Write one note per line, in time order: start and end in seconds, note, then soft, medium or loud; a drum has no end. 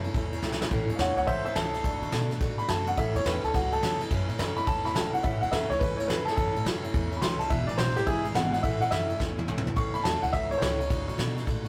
0.00 0.37 A5 medium
0.00 ride medium
0.04 0.14 A3 medium
0.04 0.15 C#4 medium
0.04 0.14 E4 medium
0.14 0.38 E2 medium
0.14 0.32 E3 medium
0.14 0.32 A3 medium
0.14 0.32 C#4 medium
0.14 0.31 E4 medium
0.14 kick loud
0.14 ride medium
0.32 0.42 A3 soft
0.32 0.42 C#4 medium
0.32 0.43 E4 medium
0.32 ride medium
0.42 0.66 C#2 medium
0.42 0.60 A2 medium
0.42 0.61 E3 medium
0.42 0.61 A3 loud
0.42 0.60 C#4 medium
0.42 0.59 E4 medium
0.42 snare medium
0.52 snare medium
0.60 0.70 A3 soft
0.60 0.71 C#4 medium
0.60 0.71 E4 medium
0.60 snare loud
0.71 0.86 A1 loud
0.71 0.89 A2 medium
0.71 0.89 E3 loud
0.71 0.89 A3 medium
0.71 0.89 C#4 medium
0.71 0.87 E4 medium
0.71 kick loud
0.71 ride medium
0.88 0.98 E2 medium
0.88 0.99 A3 medium
0.88 0.99 C#4 medium
0.88 0.99 E4 medium
0.88 ride medium
0.96 1.14 E2 loud
0.96 1.17 A2 medium
0.96 1.17 E3 medium
0.96 1.15 C#5 medium
0.96 0.98 F5 medium
0.96 snare loud
0.96 ride loud
1.00 1.17 A3 medium
1.00 1.17 C#4 medium
1.00 1.16 E4 medium
1.00 1.16 F#5 loud
1.17 1.25 D2 medium
1.17 1.27 A3 soft
1.17 1.28 C#4 medium
1.17 1.27 E4 medium
1.17 1.26 C#5 medium
1.17 1.27 F#5 medium
1.17 ride medium
1.27 1.51 C#2 medium
1.27 1.45 E3 medium
1.27 1.46 A3 medium
1.27 1.45 C#4 medium
1.27 1.44 E4 medium
1.27 1.44 C5 medium
1.27 1.44 E5 medium
1.27 kick loud
1.27 ride medium
1.45 1.55 A3 medium
1.45 1.56 C#4 soft
1.45 1.55 E4 medium
1.45 1.55 C5 medium
1.45 1.55 E5 medium
1.45 ride medium
1.55 1.79 C#2 loud
1.55 1.74 A2 medium
1.55 1.74 E3 medium
1.55 1.74 A3 medium
1.55 1.74 C#4 medium
1.55 1.72 E4 medium
1.55 2.38 A4 loud
1.55 snare loud
1.55 ride medium
1.73 1.84 A3 soft
1.73 1.85 C#4 soft
1.73 1.84 E4 medium
1.73 snare soft
1.73 ride medium
1.84 1.99 D2 medium
1.84 2.02 D3 medium
1.84 2.03 A3 medium
1.84 2.02 D4 loud
1.84 2.01 F#4 loud
1.84 kick loud
1.84 ride medium
2.01 2.10 D3 loud
2.01 2.11 A3 medium
2.01 2.12 D4 medium
2.01 2.12 F#4 medium
2.01 ride medium
2.12 2.36 B2 loud
2.12 2.30 D3 medium
2.12 2.30 A3 medium
2.12 2.30 D4 medium
2.12 2.28 F#4 medium
2.12 snare loud
2.12 ride medium
2.30 2.40 A3 medium
2.30 2.41 D4 medium
2.30 2.40 F#4 medium
2.30 snare soft
2.30 ride medium
2.40 2.64 A2 medium
2.40 2.59 D3 medium
2.40 2.59 A3 medium
2.40 2.59 D4 medium
2.40 2.57 F#4 medium
2.40 kick loud
2.40 snare soft
2.40 ride medium
2.58 2.69 A3 soft
2.58 2.69 D4 medium
2.58 2.69 F#4 soft
2.58 2.68 B5 medium
2.58 ride medium
2.69 2.93 F#2 loud
2.69 2.87 D3 medium
2.69 2.88 A3 medium
2.69 2.87 D4 medium
2.69 2.86 F#4 medium
2.69 2.87 A5 medium
2.69 snare loud
2.69 ride medium
2.87 2.97 A3 soft
2.87 2.98 D4 soft
2.87 2.97 F#4 medium
2.87 2.97 F#5 medium
2.87 ride medium
2.97 3.12 A1 loud
2.97 3.15 A2 medium
2.97 3.16 E3 medium
2.97 3.16 A3 loud
2.97 3.15 C#4 medium
2.97 3.14 E4 medium
2.97 3.15 E5 medium
2.97 kick loud
2.97 ride medium
3.15 3.24 E2 medium
3.15 3.24 A3 soft
3.15 3.25 C#4 medium
3.15 3.25 E4 medium
3.15 3.26 C#5 loud
3.15 ride medium
3.25 3.41 E2 loud
3.25 3.43 A2 medium
3.25 3.43 E3 medium
3.25 3.44 A3 medium
3.25 3.44 C#4 medium
3.25 3.43 E4 medium
3.25 3.44 B4 medium
3.25 snare loud
3.25 ride medium
3.43 3.52 D2 medium
3.43 3.53 A3 soft
3.43 3.54 C#4 medium
3.43 3.54 E4 medium
3.43 3.54 A4 medium
3.43 ride medium
3.54 3.78 C#2 loud
3.54 3.72 E3 medium
3.54 3.72 A3 medium
3.54 3.72 C#4 medium
3.54 3.71 E4 medium
3.54 3.72 F#4 medium
3.54 kick loud
3.54 snare soft
3.54 ride medium
3.72 3.82 A3 medium
3.72 3.83 C#4 medium
3.72 3.82 E4 medium
3.72 4.00 A4 loud
3.72 ride medium
3.81 4.05 E2 loud
3.81 4.00 A2 medium
3.81 4.01 E3 medium
3.81 4.01 A3 medium
3.81 4.00 C#4 medium
3.81 3.99 E4 medium
3.81 snare loud
3.81 ride loud
4.00 4.10 A3 soft
4.00 4.10 C#4 soft
4.00 4.10 E4 medium
4.00 ride medium
4.11 4.26 F#2 loud
4.11 4.29 A2 medium
4.11 4.29 E3 loud
4.11 4.29 A3 medium
4.11 4.29 C#4 loud
4.11 4.28 E4 loud
4.11 kick loud
4.11 ride medium
4.28 4.37 A2 loud
4.28 4.38 A3 medium
4.28 4.38 C#4 medium
4.28 4.38 E4 medium
4.28 ride medium
4.38 4.62 F#2 loud
4.38 4.57 A2 medium
4.38 4.57 E3 medium
4.38 4.57 A3 medium
4.38 4.56 C#4 medium
4.38 4.55 E4 medium
4.38 snare loud
4.38 ride medium
4.56 4.66 A3 soft
4.56 4.67 C#4 medium
4.56 4.67 E4 medium
4.56 4.67 B5 loud
4.56 ride medium
4.67 4.91 E2 medium
4.67 4.85 E3 medium
4.67 4.85 A3 medium
4.67 4.84 C#4 medium
4.67 4.83 E4 medium
4.67 4.85 A5 loud
4.67 kick loud
4.67 ride medium
4.84 4.94 A3 soft
4.84 4.94 C#4 medium
4.84 4.94 E4 medium
4.84 4.95 B5 loud
4.84 snare soft
4.84 ride medium
4.94 5.19 C#2 loud
4.94 5.13 A2 medium
4.94 5.13 E3 medium
4.94 5.13 A3 medium
4.94 5.13 C#4 medium
4.94 5.12 E4 medium
4.94 5.13 A5 medium
4.94 snare loud
4.94 ride medium
5.13 5.22 A3 soft
5.13 5.23 C#4 medium
5.13 5.23 E4 medium
5.13 5.23 F#5 medium
5.13 ride medium
5.23 5.39 A1 loud
5.23 5.41 A2 medium
5.23 5.42 E3 medium
5.23 5.42 A3 medium
5.23 5.41 C#4 medium
5.23 5.40 E4 medium
5.23 5.41 E5 medium
5.23 kick loud
5.23 ride medium
5.41 5.51 E2 medium
5.41 5.52 A3 soft
5.41 5.52 C#4 medium
5.41 5.52 E4 soft
5.41 5.51 F#5 medium
5.41 ride medium
5.52 5.67 E2 loud
5.52 5.70 A2 medium
5.52 5.71 E3 medium
5.52 5.71 A3 medium
5.52 5.70 C#4 medium
5.52 5.69 E4 medium
5.52 5.69 E5 medium
5.52 snare loud
5.52 ride medium
5.70 5.79 D2 medium
5.70 5.80 A3 soft
5.70 5.81 C#4 soft
5.70 5.81 E4 medium
5.70 5.80 C#5 loud
5.70 ride medium
5.79 6.04 C#2 medium
5.79 5.98 E3 medium
5.79 5.99 A3 medium
5.79 5.99 C#4 medium
5.79 5.97 E4 medium
5.79 5.97 B4 medium
5.79 kick loud
5.79 ride medium
5.97 6.08 A3 soft
5.97 6.09 C#4 medium
5.97 6.09 E4 medium
5.97 6.08 C#5 medium
5.97 ride medium
6.08 6.32 E2 loud
6.08 6.27 A2 medium
6.08 6.27 E3 medium
6.08 6.27 A3 medium
6.08 6.27 C#4 medium
6.08 6.26 E4 medium
6.08 6.26 B4 loud
6.08 snare loud
6.08 ride medium
6.25 6.36 C#4 medium
6.25 6.37 E4 medium
6.25 6.35 A4 loud
6.25 snare soft
6.25 ride medium
6.29 6.36 A3 soft
6.29 6.34 G#4 medium
6.36 6.52 F#2 loud
6.36 6.55 A2 medium
6.36 6.55 E3 medium
6.36 6.55 A3 medium
6.36 6.55 C#4 medium
6.36 6.54 E4 medium
6.36 6.64 A4 medium
6.36 kick loud
6.36 ride medium
6.55 6.64 A2 medium
6.55 6.65 A3 soft
6.55 6.66 C#4 medium
6.55 6.66 E4 medium
6.55 ride medium
6.65 6.89 F#2 loud
6.65 6.84 A2 medium
6.65 6.84 E3 medium
6.65 6.84 A3 medium
6.65 6.83 C#4 medium
6.65 6.82 E4 medium
6.65 snare loud
6.65 ride medium
6.83 6.94 A3 soft
6.83 6.94 C#4 medium
6.83 6.93 E4 medium
6.83 ride medium
6.94 7.18 E2 loud
6.94 7.12 E3 medium
6.94 7.12 A3 medium
6.94 7.11 C#4 medium
6.94 7.10 E4 medium
6.94 kick loud
6.94 ride medium
7.11 7.21 A3 soft
7.11 7.22 C#4 medium
7.11 7.22 E4 medium
7.11 ride medium
7.17 7.20 B5 medium
7.21 7.45 C#2 loud
7.21 7.40 A2 medium
7.21 7.40 E3 loud
7.21 7.40 A3 medium
7.21 7.39 C#4 medium
7.21 7.39 E4 loud
7.21 7.39 C6 loud
7.21 snare loud
7.21 ride medium
7.39 7.50 A3 soft
7.39 7.51 C#4 medium
7.39 7.50 E4 soft
7.39 7.50 A5 loud
7.39 ride medium
7.50 7.65 E1 loud
7.50 7.68 E2 medium
7.50 7.68 B2 medium
7.50 7.68 E3 medium
7.50 7.68 G#3 medium
7.50 7.67 D4 medium
7.50 7.66 E4 loud
7.50 7.68 E5 medium
7.50 kick loud
7.50 ride medium
7.67 7.77 B1 medium
7.67 7.78 E3 soft
7.67 7.78 G#3 medium
7.67 7.78 D4 soft
7.67 7.78 E4 medium
7.67 7.78 D5 loud
7.67 ride medium
7.78 7.93 B1 loud
7.78 7.96 E2 medium
7.78 7.97 B2 medium
7.78 7.97 E3 medium
7.78 7.96 G#3 medium
7.78 7.95 D4 medium
7.78 7.95 E4 medium
7.78 7.96 C5 loud
7.78 snare loud
7.78 ride medium
7.96 8.05 A1 medium
7.96 8.05 E3 soft
7.96 8.06 G#3 medium
7.96 8.06 D4 medium
7.96 8.06 E4 medium
7.96 8.06 G4 loud
7.96 snare soft
7.96 ride medium
8.06 8.30 G#1 medium
8.06 8.25 E3 medium
8.06 8.24 G#3 medium
8.06 8.24 D4 medium
8.06 8.23 E4 loud
8.06 8.23 E4 medium
8.06 8.25 G#4 loud
8.06 kick loud
8.06 ride medium
8.24 8.34 E3 soft
8.24 8.34 G#3 medium
8.24 8.34 D4 medium
8.24 8.35 E4 medium
8.24 ride medium
8.34 8.58 G#1 loud
8.34 8.53 E2 medium
8.34 8.53 B2 medium
8.34 8.53 E3 medium
8.34 8.53 G#3 medium
8.34 8.53 D4 medium
8.34 8.52 E4 loud
8.34 8.51 F#5 loud
8.34 snare loud
8.34 ride medium
8.52 8.63 E3 soft
8.52 8.64 G#3 soft
8.52 8.64 D4 medium
8.52 8.63 E4 medium
8.52 8.63 F#5 loud
8.52 snare soft
8.52 ride medium
8.63 8.79 A1 loud
8.63 8.82 A2 medium
8.63 8.82 E3 medium
8.63 8.82 A3 medium
8.63 8.82 C#4 medium
8.63 8.80 E4 medium
8.63 8.81 E5 medium
8.63 kick loud
8.63 ride medium
8.80 8.89 A2 medium
8.80 8.91 A3 soft
8.80 8.92 C#4 medium
8.80 8.92 E4 medium
8.80 8.91 F#5 loud
8.80 ride medium
8.91 9.15 F#2 loud
8.91 9.10 A2 medium
8.91 9.10 E3 medium
8.91 9.10 A3 medium
8.91 9.09 C#4 medium
8.91 9.08 E4 loud
8.91 9.19 E5 loud
8.91 snare loud
8.91 ride medium
9.09 9.18 A3 soft
9.09 9.19 C#4 medium
9.09 9.20 E4 medium
9.09 ride medium
9.19 9.44 E2 medium
9.19 9.37 E3 medium
9.19 9.38 A3 medium
9.19 9.38 C#4 medium
9.19 9.36 E4 medium
9.19 kick loud
9.19 snare medium
9.38 9.48 A3 medium
9.38 9.48 C#4 medium
9.38 9.48 E4 medium
9.38 high tom medium
9.48 9.77 C#2 medium
9.48 9.66 A2 medium
9.48 9.67 E3 loud
9.48 9.67 A3 medium
9.48 9.66 C#4 medium
9.48 9.65 E4 loud
9.48 mid tom medium
9.58 mid tom loud
9.66 9.76 A3 soft
9.66 9.76 C#4 medium
9.66 9.77 E4 medium
9.66 floor tom medium
9.76 9.92 A1 loud
9.76 9.95 A2 medium
9.76 9.95 E3 medium
9.76 9.95 A3 medium
9.76 9.94 C#4 medium
9.76 9.93 E4 medium
9.76 9.94 C#6 medium
9.76 kick loud
9.76 ride medium
9.94 10.03 E2 loud
9.94 10.04 A3 soft
9.94 10.04 C#4 soft
9.94 10.05 E4 medium
9.94 10.04 B5 loud
9.94 ride medium
10.04 10.20 E2 loud
10.04 10.23 A2 medium
10.04 10.23 E3 medium
10.04 10.23 A3 medium
10.04 10.22 C#4 medium
10.04 10.21 E4 medium
10.04 10.22 A5 loud
10.04 snare loud
10.04 ride medium
10.22 10.31 D2 medium
10.22 10.33 A3 soft
10.22 10.34 C#4 soft
10.22 10.33 E4 medium
10.22 10.33 F#5 loud
10.22 ride medium
10.33 10.57 C#2 loud
10.33 10.51 E3 medium
10.33 10.52 A3 medium
10.33 10.51 C#4 medium
10.33 10.49 E4 medium
10.33 10.51 E5 loud
10.33 kick loud
10.33 snare soft
10.33 ride medium
10.51 10.61 A3 soft
10.51 10.61 C#4 soft
10.51 10.61 E4 medium
10.51 10.60 C#5 loud
10.51 ride medium
10.57 10.80 A2 medium
10.57 10.60 C5 medium
10.62 10.90 C#2 loud
10.62 10.80 E3 medium
10.62 10.80 A3 medium
10.62 10.80 C#4 medium
10.62 10.78 E4 medium
10.62 11.17 C#5 loud
10.62 snare loud
10.62 ride medium
10.80 10.89 A3 soft
10.80 10.91 C#4 soft
10.80 10.90 E4 soft
10.80 ride medium
10.90 11.05 D2 loud
10.90 11.08 D3 medium
10.90 11.08 A3 medium
10.90 11.08 D4 medium
10.90 11.06 F#4 medium
10.90 kick loud
10.90 ride medium
11.08 11.17 D3 loud
11.08 11.17 A3 medium
11.08 11.17 D4 medium
11.08 11.18 F#4 medium
11.08 ride medium
11.18 11.42 B2 loud
11.18 11.36 D3 medium
11.18 11.36 A3 medium
11.18 11.35 D4 medium
11.18 11.34 F#4 medium
11.18 snare loud
11.18 ride medium
11.35 11.45 A3 soft
11.35 11.46 D4 medium
11.35 11.46 F#4 medium
11.35 snare soft
11.35 ride medium
11.46 11.68 A2 medium
11.46 11.64 D3 medium
11.46 11.65 A3 medium
11.46 11.64 D4 medium
11.46 11.63 F#4 medium
11.46 kick loud
11.46 snare soft
11.46 ride medium
11.64 11.68 D4 medium
11.64 11.68 F#4 medium